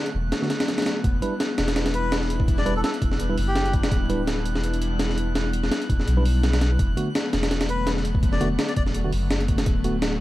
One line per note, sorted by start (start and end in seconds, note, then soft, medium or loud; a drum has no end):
0.00 1.03 F#6 medium
0.06 closed hi-hat soft
0.14 0.32 E1 loud
0.14 0.76 D3 medium
0.14 0.76 F#3 medium
0.14 0.76 A3 medium
0.14 0.76 B3 medium
0.32 snare loud
0.32 closed hi-hat medium
0.42 0.48 D3 medium
0.42 0.48 A3 medium
0.42 0.48 B3 medium
0.42 0.48 F#4 medium
0.42 snare soft
0.50 snare loud
0.50 closed hi-hat medium
0.60 snare loud
0.60 closed hi-hat medium
0.68 snare loud
0.68 closed hi-hat medium
0.78 1.02 D3 medium
0.78 1.02 F#3 medium
0.78 1.02 A3 medium
0.78 1.02 B3 medium
0.78 snare medium
0.78 closed hi-hat medium
0.82 snare medium
0.82 closed hi-hat medium
0.86 snare loud
0.86 closed hi-hat medium
1.04 1.21 E1 loud
1.04 1.29 G3 medium
1.04 1.30 B3 medium
1.04 1.29 D4 medium
1.04 1.29 E4 medium
1.04 10.21 F#6 medium
1.04 kick loud
1.04 closed hi-hat medium
1.22 1.33 G3 medium
1.22 1.33 D4 medium
1.22 1.33 E4 medium
1.22 1.33 B4 medium
1.22 closed hi-hat medium
1.32 1.56 G3 loud
1.32 1.56 B3 medium
1.32 1.56 D4 medium
1.32 1.56 E4 loud
1.40 snare loud
1.40 closed hi-hat medium
1.57 2.83 E1 loud
1.57 2.46 G3 loud
1.57 2.46 B3 medium
1.57 2.46 D4 medium
1.57 2.46 E4 loud
1.57 snare loud
1.57 closed hi-hat medium
1.68 snare loud
1.68 closed hi-hat medium
1.76 snare loud
1.76 closed hi-hat medium
1.86 snare loud
1.86 closed hi-hat medium
1.94 2.16 B4 medium
1.94 closed hi-hat medium
2.12 snare loud
2.12 closed hi-hat medium
2.22 snare soft
2.30 closed hi-hat medium
2.40 kick loud
2.48 2.73 G3 medium
2.48 2.73 B3 medium
2.48 2.73 D4 medium
2.48 2.73 E4 medium
2.48 kick loud
2.48 closed hi-hat medium
2.58 2.74 D5 medium
2.58 snare soft
2.66 2.73 G3 medium
2.66 2.73 D4 medium
2.66 2.73 E4 medium
2.66 2.73 B4 loud
2.66 closed hi-hat medium
2.75 2.88 G3 medium
2.75 2.88 B3 medium
2.75 2.88 D4 medium
2.75 2.88 E4 medium
2.75 2.81 A4 medium
2.84 2.90 A4 medium
2.84 snare loud
2.84 closed hi-hat medium
2.94 closed hi-hat soft
3.02 3.36 E1 loud
3.02 3.64 G3 medium
3.02 3.64 B3 medium
3.02 3.64 D4 medium
3.02 3.64 E4 medium
3.02 kick medium
3.02 closed hi-hat medium
3.12 snare soft
3.20 closed hi-hat medium
3.30 3.35 G3 medium
3.30 3.35 D4 medium
3.30 3.35 E4 medium
3.30 3.35 B4 medium
3.38 3.85 F#1 medium
3.38 open hi-hat medium
3.48 3.74 G4 medium
3.56 snare loud
3.56 closed hi-hat medium
3.65 3.90 G3 medium
3.65 3.90 B3 medium
3.65 3.90 D4 medium
3.65 3.90 E4 medium
3.65 closed hi-hat soft
3.73 kick medium
3.73 closed hi-hat medium
3.83 4.47 D1 medium
3.83 snare loud
3.83 closed hi-hat medium
3.92 4.17 G3 medium
3.92 4.17 B3 medium
3.92 4.17 D4 medium
3.92 4.17 E4 medium
3.92 kick loud
3.92 closed hi-hat medium
4.10 4.21 G3 medium
4.10 4.21 D4 medium
4.10 4.21 E4 medium
4.10 4.21 B4 medium
4.10 closed hi-hat medium
4.20 4.44 G3 loud
4.20 4.44 B3 medium
4.20 4.44 D4 loud
4.20 4.44 E4 loud
4.27 snare loud
4.27 closed hi-hat medium
4.45 5.70 E1 loud
4.45 5.34 G3 loud
4.45 5.33 B3 medium
4.45 5.34 D4 medium
4.45 5.33 E4 loud
4.45 closed hi-hat medium
4.55 snare medium
4.64 closed hi-hat medium
4.74 closed hi-hat soft
4.82 closed hi-hat medium
5.00 snare loud
5.00 closed hi-hat medium
5.09 snare soft
5.18 closed hi-hat medium
5.35 5.61 G3 medium
5.35 5.61 B3 medium
5.35 5.61 D4 medium
5.35 5.61 E4 medium
5.35 snare loud
5.35 closed hi-hat medium
5.53 closed hi-hat medium
5.63 5.76 G3 medium
5.63 5.76 B3 medium
5.63 5.76 D4 medium
5.63 5.76 E4 medium
5.63 snare soft
5.71 snare loud
5.71 closed hi-hat medium
5.82 closed hi-hat soft
5.89 6.07 E1 loud
5.89 6.51 G3 medium
5.89 6.51 B3 medium
5.89 6.51 D4 medium
5.89 6.51 E4 medium
5.89 kick medium
5.89 closed hi-hat medium
6.00 snare soft
6.08 6.78 B1 loud
6.08 closed hi-hat medium
6.17 6.23 G3 medium
6.17 6.23 D4 medium
6.17 6.23 E4 medium
6.17 6.23 B4 medium
6.25 open hi-hat medium
6.43 snare loud
6.43 closed hi-hat medium
6.53 snare loud
6.53 closed hi-hat medium
6.61 6.77 G3 medium
6.61 6.77 B3 medium
6.61 6.77 D4 medium
6.61 6.77 E4 loud
6.61 snare loud
6.61 closed hi-hat medium
6.79 6.96 E1 loud
6.79 7.05 D3 medium
6.79 7.05 F#3 medium
6.79 7.05 A3 medium
6.79 7.05 B3 medium
6.79 kick loud
6.79 closed hi-hat medium
6.97 7.08 D3 medium
6.97 7.08 A3 medium
6.97 7.08 B3 medium
6.97 7.08 F#4 medium
6.97 closed hi-hat medium
7.07 7.31 D3 loud
7.07 7.31 F#3 medium
7.07 7.31 A3 medium
7.07 7.31 B3 loud
7.15 snare loud
7.15 closed hi-hat medium
7.33 8.57 E1 loud
7.33 8.21 D3 loud
7.33 8.21 F#3 medium
7.33 8.21 A3 medium
7.33 8.21 B3 loud
7.33 snare loud
7.33 closed hi-hat medium
7.43 snare loud
7.43 closed hi-hat medium
7.51 snare loud
7.51 closed hi-hat medium
7.61 snare loud
7.61 closed hi-hat medium
7.69 7.91 B4 medium
7.69 closed hi-hat medium
7.87 snare loud
7.87 closed hi-hat medium
7.97 snare soft
8.05 closed hi-hat medium
8.15 kick loud
8.23 8.48 D3 medium
8.23 8.48 F#3 medium
8.23 8.48 A3 medium
8.23 8.48 B3 medium
8.23 kick loud
8.23 closed hi-hat medium
8.32 8.49 D5 medium
8.32 snare soft
8.41 8.48 D3 medium
8.41 8.48 A3 medium
8.41 8.48 B3 medium
8.41 8.48 F#4 loud
8.41 closed hi-hat medium
8.51 8.63 D3 medium
8.51 8.63 F#3 medium
8.51 8.63 A3 medium
8.51 8.63 B3 medium
8.59 snare loud
8.59 closed hi-hat medium
8.69 8.74 D5 medium
8.69 closed hi-hat soft
8.76 9.11 E1 loud
8.76 9.38 D3 medium
8.76 9.39 F#3 medium
8.76 9.39 A3 medium
8.76 9.39 B3 medium
8.76 8.83 D5 medium
8.76 kick medium
8.76 closed hi-hat medium
8.87 snare soft
8.95 closed hi-hat medium
9.04 9.10 D3 medium
9.04 9.10 A3 medium
9.04 9.10 B3 medium
9.04 9.10 F#4 medium
9.13 9.60 F#1 medium
9.13 open hi-hat medium
9.30 snare loud
9.30 closed hi-hat medium
9.40 9.65 D3 medium
9.40 9.65 F#3 medium
9.40 9.65 A3 medium
9.40 9.65 B3 medium
9.40 closed hi-hat soft
9.48 kick medium
9.48 closed hi-hat medium
9.58 10.21 D1 medium
9.58 snare loud
9.58 closed hi-hat medium
9.66 9.92 D3 medium
9.66 9.92 F#3 medium
9.66 9.92 A3 medium
9.66 9.92 B3 medium
9.66 kick loud
9.66 closed hi-hat medium
9.84 9.95 D3 medium
9.84 9.95 A3 medium
9.84 9.95 B3 medium
9.84 9.95 F#4 medium
9.84 closed hi-hat medium
9.94 10.18 D3 loud
9.94 10.19 F#3 medium
9.94 10.19 A3 loud
9.94 10.19 B3 loud
10.02 snare loud
10.02 closed hi-hat medium